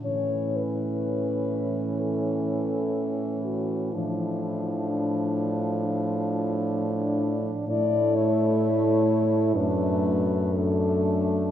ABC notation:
X:1
M:4/4
L:1/8
Q:1/4=62
K:A
V:1 name="French horn"
c B3 A3 F | E2 D2 =F z D2 | d c3 B2 A2 |]
V:2 name="French horn"
C8 | D8 | E4 D2 D2 |]
V:3 name="French horn"
E,8 | =F,8 | A,4 A,2 A,2 |]
V:4 name="French horn" clef=bass
A,,8 | A,,8 | A,,4 F,,4 |]